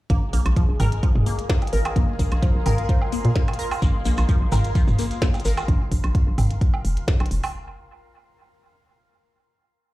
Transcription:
0.10 0.18 A#1 loud
0.10 5.69 G#3 medium
0.10 0.14 A#3 medium
0.10 5.69 G#4 medium
0.10 5.68 A#4 medium
0.10 kick loud
0.10 closed hi-hat medium
0.33 0.42 A#1 medium
0.33 0.39 A#3 medium
0.33 open hi-hat medium
0.43 0.53 A#1 medium
0.43 5.68 F5 medium
0.43 closed hi-hat soft
0.43 high woodblock medium
0.56 0.66 F3 medium
0.56 kick loud
0.56 closed hi-hat medium
0.69 0.76 A#1 medium
0.80 0.88 G#1 medium
0.80 0.86 A#4 loud
0.80 mid tom loud
0.80 open hi-hat medium
0.80 low woodblock medium
0.92 closed hi-hat soft
1.03 1.09 F3 medium
1.03 kick loud
1.03 closed hi-hat medium
1.15 1.23 F1 medium
1.15 mid tom medium
1.26 1.32 A#3 medium
1.26 open hi-hat medium
1.36 5.68 C6 medium
1.36 closed hi-hat soft
1.49 1.56 A#3 medium
1.49 kick loud
1.49 snare loud
1.49 closed hi-hat medium
1.62 closed hi-hat soft
1.62 low woodblock medium
1.67 closed hi-hat medium
1.73 1.81 G#1 medium
1.73 1.79 A#4 loud
1.73 open hi-hat medium
1.85 closed hi-hat soft
1.85 high woodblock medium
1.85 low woodblock medium
1.96 2.04 A#1 loud
1.96 2.00 A#3 medium
1.96 kick loud
1.96 closed hi-hat medium
2.19 2.28 A#1 medium
2.19 2.25 A#3 medium
2.19 kick medium
2.19 open hi-hat medium
2.32 2.39 A#1 medium
2.32 closed hi-hat soft
2.32 high woodblock medium
2.42 2.52 F3 medium
2.42 kick loud
2.42 closed hi-hat medium
2.55 2.62 A#1 medium
2.66 2.74 G#1 medium
2.66 2.72 A#4 loud
2.66 mid tom medium
2.66 open hi-hat medium
2.66 low woodblock medium
2.78 closed hi-hat soft
2.89 2.95 F3 medium
2.89 kick loud
2.89 closed hi-hat medium
3.02 low woodblock medium
3.12 3.19 A#3 medium
3.12 open hi-hat medium
3.25 3.32 A#2 loud
3.25 closed hi-hat soft
3.35 3.42 A#3 medium
3.35 kick loud
3.35 snare loud
3.35 closed hi-hat medium
3.48 closed hi-hat soft
3.48 high woodblock medium
3.48 low woodblock medium
3.54 closed hi-hat medium
3.59 3.65 A#4 loud
3.59 open hi-hat medium
3.71 open hi-hat soft
3.71 high woodblock medium
3.71 low woodblock medium
3.82 3.90 A#1 loud
3.82 3.86 A#3 medium
3.82 kick loud
3.82 closed hi-hat medium
3.82 shekere medium
4.05 4.14 A#1 medium
4.05 4.12 A#3 medium
4.05 open hi-hat medium
4.05 shekere medium
4.17 4.25 A#1 medium
4.17 closed hi-hat soft
4.17 high woodblock medium
4.17 shekere soft
4.29 4.38 F3 medium
4.29 kick loud
4.29 closed hi-hat medium
4.29 shekere medium
4.41 4.48 A#1 medium
4.52 4.60 G#1 medium
4.52 4.58 A#4 loud
4.52 mid tom loud
4.52 open hi-hat medium
4.52 low woodblock medium
4.52 shekere loud
4.64 closed hi-hat soft
4.64 shekere soft
4.75 4.81 F3 medium
4.75 kick loud
4.75 closed hi-hat medium
4.75 shekere medium
4.88 4.95 F1 loud
4.88 mid tom loud
4.88 shekere soft
4.99 5.05 A#3 medium
4.99 open hi-hat medium
4.99 shekere medium
5.11 closed hi-hat soft
5.11 shekere soft
5.22 5.28 A#3 medium
5.22 kick loud
5.22 snare loud
5.22 closed hi-hat medium
5.22 shekere medium
5.34 closed hi-hat soft
5.34 low woodblock medium
5.34 shekere soft
5.40 closed hi-hat medium
5.45 5.53 G#1 medium
5.45 5.51 A#4 loud
5.45 open hi-hat medium
5.45 shekere medium
5.57 closed hi-hat soft
5.57 high woodblock medium
5.57 low woodblock medium
5.57 shekere soft
5.68 5.77 A#1 loud
5.68 kick loud
5.68 closed hi-hat soft
5.92 6.00 A#1 medium
5.92 kick medium
5.92 open hi-hat medium
6.04 6.11 A#1 loud
6.04 closed hi-hat soft
6.04 high woodblock medium
6.15 kick loud
6.15 closed hi-hat medium
6.27 6.34 A#1 medium
6.38 6.46 G#1 medium
6.38 mid tom medium
6.38 open hi-hat medium
6.38 low woodblock medium
6.51 closed hi-hat soft
6.61 kick loud
6.61 closed hi-hat medium
6.74 low woodblock medium
6.85 7.01 F1 medium
6.85 open hi-hat medium
6.97 closed hi-hat soft
7.08 kick loud
7.08 snare loud
7.08 closed hi-hat medium
7.20 7.27 A#1 medium
7.20 closed hi-hat soft
7.20 high woodblock medium
7.20 low woodblock medium
7.26 closed hi-hat medium
7.31 7.39 F1 medium
7.31 open hi-hat medium
7.43 open hi-hat soft
7.43 high woodblock medium
7.43 low woodblock medium

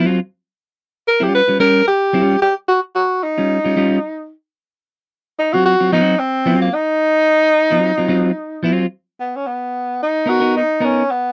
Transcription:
0.00 0.18 F#3 medium
0.00 0.19 C4 medium
0.00 0.19 F4 loud
1.08 1.25 A#4 medium
1.20 1.41 G3 medium
1.20 1.40 C#4 medium
1.20 1.40 F4 medium
1.20 1.34 G4 medium
1.34 1.59 B4 loud
1.48 1.58 G3 medium
1.48 1.59 C#4 medium
1.48 1.60 F4 medium
1.60 1.81 G3 medium
1.60 1.81 C#4 medium
1.60 1.82 G4 loud
1.60 1.85 A#4 loud
1.87 2.37 G4 loud
2.13 2.35 G3 medium
2.13 2.35 C#4 medium
2.13 2.36 F4 medium
2.42 2.54 G4 loud
2.68 2.80 F#4 loud
2.95 3.25 F#4 medium
3.23 4.31 D#4 medium
3.38 3.58 G3 medium
3.38 3.58 C#4 medium
3.38 3.57 F4 medium
3.64 3.75 G3 medium
3.64 3.76 C#4 medium
3.64 3.77 F4 medium
3.77 3.98 G3 medium
3.77 3.98 C#4 medium
3.77 3.98 F4 loud
5.39 5.55 D#4 loud
5.53 5.74 F#3 medium
5.53 5.74 C4 medium
5.53 5.74 F4 medium
5.53 5.65 F#4 loud
5.65 5.91 F#4 loud
5.80 5.91 F#3 medium
5.80 5.92 C4 medium
5.80 5.93 F4 medium
5.92 6.14 F#3 loud
5.92 6.15 C4 loud
5.92 6.20 D#4 loud
5.92 6.15 F#4 loud
6.19 6.61 C4 loud
6.46 6.68 F#3 medium
6.46 6.68 C4 medium
6.46 6.68 F4 medium
6.61 6.75 A#3 medium
6.74 8.63 D#4 loud
7.71 7.91 F#3 medium
7.71 7.91 C4 medium
7.71 7.90 F4 medium
7.98 8.07 F#3 medium
7.98 8.08 C4 medium
7.98 8.09 F4 medium
8.08 8.30 F#3 medium
8.08 8.31 C4 medium
8.08 8.31 F4 loud
8.63 8.85 F#3 medium
8.63 8.85 C4 medium
8.63 8.86 F4 loud
9.20 9.37 B3 medium
9.36 9.48 C#4 medium
9.46 10.00 B3 medium
10.02 10.31 D#4 medium
10.26 10.40 B3 medium
10.26 10.40 D#4 medium
10.26 10.55 F#4 loud
10.26 10.39 A#4 medium
10.40 10.62 B3 medium
10.40 10.61 D#4 medium
10.40 10.61 A#4 medium
10.57 10.85 D#4 medium
10.80 11.02 B3 medium
10.80 11.12 C#4 medium
10.80 11.02 D#4 medium
10.80 11.03 A#4 medium
11.10 11.32 B3 medium

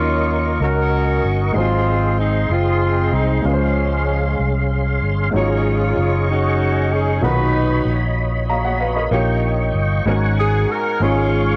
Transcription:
0.00 0.57 D#2 medium
0.00 0.57 D#3 medium
0.00 1.52 F#3 soft
0.00 0.58 A#3 medium
0.00 1.50 A#3 medium
0.00 0.58 C#4 medium
0.00 1.51 D#4 soft
0.00 0.58 F4 medium
0.00 1.54 A#4 medium
0.00 1.53 C#5 medium
0.00 1.53 D#5 soft
0.00 1.54 C#6 medium
0.60 1.19 C#2 medium
0.60 1.52 C#4 medium
0.60 1.52 F#4 medium
0.60 1.33 A#4 loud
1.24 1.53 G1 medium
1.52 2.46 G#1 medium
1.52 2.46 G#2 soft
1.52 3.41 F#3 soft
1.52 3.39 G#3 medium
1.52 3.40 D#4 medium
1.52 5.30 G#4 medium
1.52 3.42 D#5 soft
1.52 5.30 C6 medium
1.57 2.48 C4 medium
1.57 2.16 F4 medium
1.57 3.42 C5 medium
2.20 2.49 D#4 medium
2.50 3.09 F#1 medium
2.50 3.41 C4 medium
2.50 3.14 F4 medium
3.12 3.42 C2 medium
3.12 3.45 D#4 medium
3.42 4.35 C#2 medium
3.42 4.35 C#3 soft
3.42 5.29 G#3 soft
3.42 5.30 C#4 soft
3.42 5.32 C#4 medium
3.42 4.71 C#4 medium
3.42 5.30 F4 medium
3.42 5.32 F5 soft
3.46 4.68 F3 soft
3.46 4.67 G#3 soft
3.46 3.52 B4 soft
3.54 5.35 C5 medium
4.39 4.98 C2 medium
5.02 5.31 G1 medium
5.31 5.93 G#1 medium
5.31 6.24 G#2 medium
5.31 7.19 F#3 soft
5.31 7.17 G#3 soft
5.31 7.18 D#4 medium
5.36 6.25 C#4 medium
5.36 6.25 F4 medium
5.36 7.22 G#4 medium
5.36 7.20 C#5 medium
5.36 9.09 C#5 medium
5.36 7.22 D#5 soft
5.36 7.22 C#6 medium
5.97 7.19 F#1 medium
6.31 7.20 C#4 medium
6.31 7.20 D#4 medium
6.31 6.93 F#4 medium
6.94 7.24 G#4 medium
7.21 7.82 B1 medium
7.21 9.07 A#2 medium
7.21 8.13 D#3 medium
7.21 9.08 D#4 medium
7.21 8.14 D#4 medium
7.21 8.14 F#4 medium
7.21 9.08 F#4 medium
7.21 7.94 B4 medium
7.21 10.03 D#5 medium
7.21 9.10 B5 medium
7.26 7.31 A#4 medium
7.32 8.51 B4 medium
7.85 9.07 A#1 medium
8.50 8.64 F5 soft
8.50 8.64 A#5 medium
8.65 8.80 C#5 soft
8.65 8.79 F#5 medium
8.80 8.95 B4 medium
8.80 8.95 F5 medium
8.97 9.26 A#4 soft
8.97 9.26 D#5 medium
9.11 9.70 A#1 medium
9.11 10.02 A#2 medium
9.11 10.06 A#3 medium
9.11 10.06 D#4 medium
9.11 10.07 G4 medium
9.11 10.07 C#5 medium
9.11 10.05 G5 medium
9.11 10.05 C#6 medium
9.74 10.03 G1 medium
10.05 10.65 G#1 medium
10.05 10.97 G#2 medium
10.05 10.99 G#3 medium
10.05 11.00 C#4 medium
10.05 11.01 F#4 medium
10.05 11.02 A#4 medium
10.05 11.00 F#5 medium
10.05 11.00 G#5 medium
10.05 11.00 C#6 medium
10.39 10.68 G#4 medium
10.71 11.01 A#4 medium
11.00 11.56 G#1 medium
11.00 11.56 G#2 medium
11.00 11.56 G#3 medium
11.00 11.56 C#4 medium
11.00 11.56 F4 soft
11.00 11.56 F4 medium
11.00 11.56 G#4 medium
11.00 11.56 C#5 medium
11.00 11.56 C#6 medium
11.04 11.56 F5 medium

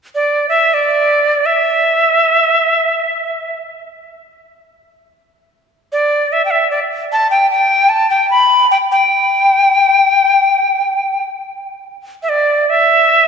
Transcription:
0.15 0.47 D5 medium
0.49 0.75 E5 medium
0.74 1.47 D5 medium
1.46 3.59 E5 medium
5.92 6.34 D5 medium
6.32 6.45 E5 medium
6.45 6.52 G5 medium
6.51 6.70 E5 medium
6.71 6.80 D5 medium
7.12 7.30 A5 medium
7.31 7.49 G5 medium
7.51 7.91 G5 medium
7.89 8.10 A5 medium
8.10 8.29 G5 medium
8.31 8.68 B5 medium
8.71 8.77 G5 medium
8.91 11.26 G5 medium
12.23 12.31 E5 medium
12.29 12.71 D5 medium
12.69 13.28 E5 medium

